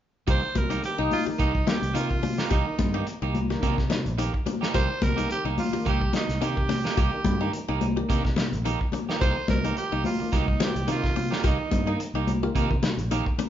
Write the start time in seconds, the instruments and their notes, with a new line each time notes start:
0.27 fingered electric bass C2, clean electric guitar D#3 A#3 D#4 G4, qanun G4, alto saxophone C5, kick, closed hi-hat
0.43 muted clean electric guitar stroke
0.55 fingered electric bass C2, alto saxophone A#4, muted clean electric guitar stroke, kick, closed hi-hat, high conga
0.70 clean electric guitar A#3 D#4 G4, qanun D#4, closed hi-hat
0.83 tonewheel organ D#3 A#3 D4, alto saxophone G4, muted clean electric guitar stroke, closed hi-hat
0.98 fingered electric bass C2, clean electric guitar A#3 D#4 G4, qanun D#4
1.11 alto saxophone F4, open hi-hat, high conga
1.26 tonewheel organ D#3 A#3 D4, qanun G4, muted clean electric guitar stroke, muted fingered electric bass stroke
1.39 fingered electric bass C2, clean electric guitar D#3 A#3 D#4 G4, alto saxophone D#4, kick, closed hi-hat
1.54 muted clean electric guitar stroke, kick
1.67 tonewheel organ D#3 A#3 D4, qanun D#4, alto saxophone G4, muted clean electric guitar stroke, snare, closed hi-hat, high conga
1.82 fingered electric bass C2, closed hi-hat
1.94 fingered electric bass C3, clean electric guitar D#3 A#3 D#4 G4, tonewheel organ D#3 A#3 F4, qanun D#4, alto saxophone F4, closed hi-hat
2.10 muted clean electric guitar stroke, kick
2.22 qanun D4, muted clean electric guitar stroke, open hi-hat, high conga
2.38 clean electric guitar A#3 D#4 G4, snare
2.50 fingered electric bass C2, clean electric guitar D#3 A#3 D#4 G4, alto saxophone D#4, qanun G4, kick, closed hi-hat
2.67 tonewheel organ D#3 A#3 D4, muted clean electric guitar stroke
2.78 fingered electric bass G2, muted clean electric guitar stroke, kick, closed hi-hat, high conga
2.94 tonewheel organ D#3 A#3 D4, clean electric guitar A#3 D#4 G4, qanun D#4
3.07 muted clean electric guitar stroke, closed hi-hat
3.22 fingered electric bass C2, clean electric guitar A#3 D#4 G4, qanun D#4
3.35 closed hi-hat, high conga
3.50 tonewheel organ D#3 A#3 D4, qanun G4, muted clean electric guitar stroke, snare
3.62 fingered electric bass C3, clean electric guitar D#3 A#3 D#4 G4, kick, closed hi-hat, high conga
3.78 muted clean electric guitar stroke, kick, snare
3.90 qanun D#4, muted clean electric guitar stroke, snare, closed hi-hat, high conga
4.06 fingered electric bass A#1, closed hi-hat
4.18 clean electric guitar D#3 A#3 G4, qanun D#4, muted clean electric guitar stroke, closed hi-hat
4.34 muted clean electric guitar stroke, kick
4.46 tonewheel organ A#3 D4, qanun D4, muted clean electric guitar stroke, closed hi-hat, high conga
4.61 tonewheel organ D#3 A#3 D4, clean electric guitar A#3 D#4 G4, snare
4.74 fingered electric bass C2, clean electric guitar D#3 A#3 D#4 G4, qanun G4, alto saxophone C5, kick, closed hi-hat
4.90 muted clean electric guitar stroke
5.02 fingered electric bass C2, alto saxophone A#4, muted clean electric guitar stroke, kick, closed hi-hat, high conga
5.16 clean electric guitar A#3 D#4 G4, qanun D#4, closed hi-hat
5.29 tonewheel organ D#3 A#3 C4, alto saxophone G4, muted clean electric guitar stroke, closed hi-hat
5.44 fingered electric bass C2, clean electric guitar A#3 D#4 G4, qanun D#4
5.58 alto saxophone F4, open hi-hat, high conga
5.73 tonewheel organ D#3 A#3 D4, qanun G4, muted fingered electric bass stroke, muted clean electric guitar stroke
5.85 fingered electric bass C2, clean electric guitar D#3 A#3 D#4 G4, alto saxophone G4, kick, closed hi-hat
6.01 muted clean electric guitar stroke, kick
6.13 tonewheel organ D#3 A#3 D4, qanun D#4, alto saxophone D#4, muted clean electric guitar stroke, snare, closed hi-hat, high conga
6.29 fingered electric bass C2, snare, closed hi-hat
6.41 fingered electric bass C3, clean electric guitar D#3 A#3 D#4 G4, tonewheel organ D#3 A#3 D4, qanun D#4, alto saxophone G4, closed hi-hat
6.57 muted clean electric guitar stroke, kick
6.69 qanun D4, muted clean electric guitar stroke, snare, open hi-hat, high conga
6.84 clean electric guitar A#3 D#4, muted clean electric guitar stroke, snare
6.97 fingered electric bass C2, clean electric guitar A#3 D#4 G4, qanun G4, muted clean electric guitar stroke, kick, closed hi-hat
7.01 alto saxophone G4
7.12 tonewheel organ D#3 A#3 D4, muted clean electric guitar stroke
7.25 fingered electric bass G2, muted clean electric guitar stroke, kick, closed hi-hat, high conga
7.41 tonewheel organ D#3 A#3 D4, clean electric guitar A#3 D#4 G4, qanun D#4
7.53 muted clean electric guitar stroke, closed hi-hat
7.68 fingered electric bass C2, clean electric guitar A#3 D#4 G4, qanun D#4
7.81 closed hi-hat, high conga
7.97 tonewheel organ D#3 A#3 D4, qanun G4, muted clean electric guitar stroke
8.09 fingered electric bass C3, clean electric guitar D#3 A#3 D#4 G4, kick, closed hi-hat
8.24 muted clean electric guitar stroke, kick, snare
8.36 qanun D#4, muted clean electric guitar stroke, snare, closed hi-hat, high conga
8.53 fingered electric bass A#1, closed hi-hat
8.65 clean electric guitar D#3 A#3 D#4 G4, qanun D#4, closed hi-hat
8.81 muted clean electric guitar stroke, kick
8.92 tonewheel organ A#3 D4, qanun D4, muted clean electric guitar stroke, closed hi-hat, high conga
9.09 tonewheel organ D#3 A#3 D#4, clean electric guitar A#3 D#4 G4, snare
9.21 fingered electric bass C2, clean electric guitar D#3 A#3 D#4 G4, qanun G4, alto saxophone C5, kick, closed hi-hat
9.37 muted clean electric guitar stroke
9.48 fingered electric bass C2, alto saxophone A#4, muted clean electric guitar stroke, kick, snare, closed hi-hat, high conga
9.64 clean electric guitar A#3 D#4 G4, qanun D#4, closed hi-hat
9.77 tonewheel organ D#3 A#3 F4, alto saxophone G4, muted clean electric guitar stroke, closed hi-hat
9.92 fingered electric bass C2, clean electric guitar A#3 D#4 G4, qanun D#4
10.04 alto saxophone F4, open hi-hat, high conga
10.20 tonewheel organ D#3 A#3 D4, muted clean electric guitar stroke, muted fingered electric bass stroke
10.32 fingered electric bass C2, clean electric guitar D#3 A#3 D#4 G4, alto saxophone D#4, kick, snare, closed hi-hat, high conga
10.47 muted clean electric guitar stroke, kick
10.60 tonewheel organ D#3 A#3 C4, qanun D#4, alto saxophone G4, muted clean electric guitar stroke, snare, closed hi-hat, high conga
10.76 fingered electric bass C2, closed hi-hat
10.87 fingered electric bass C3, clean electric guitar D#3 A#3 D#4 G4, tonewheel organ D#3 A#3 F4, qanun D#4, closed hi-hat
10.92 alto saxophone F4
11.03 muted clean electric guitar stroke, kick, snare
11.16 qanun D4, muted clean electric guitar stroke, open hi-hat, high conga
11.31 clean electric guitar A#3 D#4 G4, snare
11.43 fingered electric bass C2, clean electric guitar D#3 A#3 D#4 G4, alto saxophone D#4, qanun G4, kick, closed hi-hat
11.59 tonewheel organ D#3 A#3 D4, muted clean electric guitar stroke
11.71 fingered electric bass G2, muted clean electric guitar stroke, kick, closed hi-hat, high conga
11.87 tonewheel organ D#3 A#3 D#4, clean electric guitar A#3 D#4, qanun D#4, muted clean electric guitar stroke
12.00 muted clean electric guitar stroke, closed hi-hat
12.14 fingered electric bass C2, clean electric guitar A#3 D#4 G4, qanun D#4
12.27 closed hi-hat, high conga
12.43 tonewheel organ D#3 A#3 F4, qanun G4, muted clean electric guitar stroke
12.55 fingered electric bass C3, clean electric guitar D#3 A#3 D#4 G4, kick, closed hi-hat
12.71 muted clean electric guitar stroke, kick
12.83 qanun D#4, muted clean electric guitar stroke, snare, closed hi-hat, high conga
12.97 fingered electric bass A#1, closed hi-hat
13.11 clean electric guitar D#3 A#3 D#4 G4, qanun D#4, closed hi-hat
13.26 muted clean electric guitar stroke, kick
13.38 tonewheel organ A#3 D4, qanun D4, muted clean electric guitar stroke, closed hi-hat, high conga